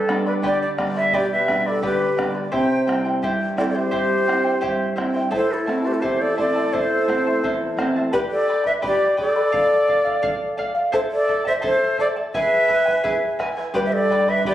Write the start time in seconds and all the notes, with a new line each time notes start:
Already playing: G2 A4
0.08 G3 B3 D4 B4 D5 G5 B5, bombo rim
0.26 B4 D5 B5
0.42 D3 G4 B4 D5 G5 B5, bombo low
0.62 D5
0.78 G3 B3 D4 B4 D5 G5 B5, bombo rim, bombo low
0.96 B4 D5 E5 B5
1.13 B2 G4 B4 D5 G5 B5, bombo low
1.31 B4 E5
1.48 G3 B3 D4 B4 D5 G5 B5, bombo rim, bombo low
1.66 A4 B4 D5 B5
1.82 D3 G4 B4 D5 G5 B5, bombo low
2.17 G3 B3 D4 B4 D5 G5 B5, bombo rim, bombo low
2.35 B4 D5 B5
2.52 C3 E4 G4 C5 E5 G5, bombo low
2.87 G3 C4 E4 C5 E5 G5, bombo rim
3.05 E4 C5 G5
3.22 G2 E4 G4 C5 E5 G5, bombo low
3.56 G3 C4 E4 A4 C5 D5 E5 G5, bombo rim, bombo low
3.69 A4 D5
3.75 E4 G4 C5 G5
3.91 G2 E4 G4 C5 E5 G5, bombo low
4.26 G3 C4 E4 C5 E5 G5, bombo rim
4.44 E4 C5 G5
4.61 G2 E4 G4 C5 E5 G5, bombo low
4.96 G3 C4 E4 C5 E5 G5, bombo rim, bombo low
5.14 E4 C5 G5
5.31 A2 E4 A4 C5 E5 A5, bombo low
5.35 A4
5.52 E4 A4
5.66 A3 C4 E4 C5 E5 A5, bombo rim
5.84 E4 G4 C5 A5
5.93 E4 A4
6.01 E2 E4 G4 A4 C5 E5 A5, bombo low
6.21 A4 D5
6.36 A3 C4 E4 A4 C5 D5 E5 A5, bombo low
6.56 E4 C5 A5
6.73 E2 E4 A4 C5 E5 A5, bombo low
7.08 A3 C4 E4 C5 E5 A5, bombo rim, bombo low
7.27 E4 C5 A5
7.43 E2 E4 A4 C5 E5 A5, bombo low
7.77 A3 C4 E4 C5 E5 A5, bombo rim, bombo low
7.96 E4 C5 A5
8.13 G4 B4 D5 G5 B5, bombo low
8.30 A4 D5
8.48 B4 D5 G5 B5
8.64 B4 D5 E5 B5, bombo low
8.82 G4 B4 D5 G5 B5, bombo low
9.17 A4 B4 D5 G5 B5, bombo low
9.36 B4 D5 B5
9.52 A4 D5 F5, bombo low
9.87 A4 D5 F5, bombo low
10.05 D5 F5, bombo low
10.22 A4 D5 F5, bombo low
10.57 A4 D5 F5, bombo low
10.75 D5 F5
10.92 E4 A4 C5 E5 A5, bombo low
11.11 A4 D5
11.27 E4 A4 E5 A5, bombo low
11.45 E4 A4 C5 E5 A5, bombo low
11.62 E4 A4 C5 E5 A5, bombo low
11.98 E4 A4 D5 E5 A5, bombo low
12.16 E4 A4 A5
12.34 E4 G#4 B4 E5 G#5, bombo low
12.68 E4 B4 E5 G#5, bombo low
12.86 E4 B4 G#5, bombo low
13.03 E4 G#4 B4 E5 G#5, bombo low
13.39 E4 B4 E5 G#5, bombo rim, bombo low
13.57 E4 B4 G#5
13.74 G2 G4 B4 D5 G5 B5, bombo low
13.85 C5 E5
13.93 A4 D5
14.09 B4 D5 G5 B5, bombo low
14.27 B4 D5 E5 B5, bombo low
14.45 G4 B4 D5 G5 B5, bombo low